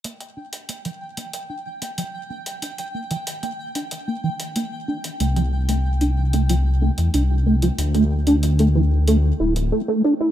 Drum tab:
HH |xx-xxx-xx--xx--x|xx-xxx-xx--xx--x|xx-x-x-xx--xx--x|xx-xxx--x--x----|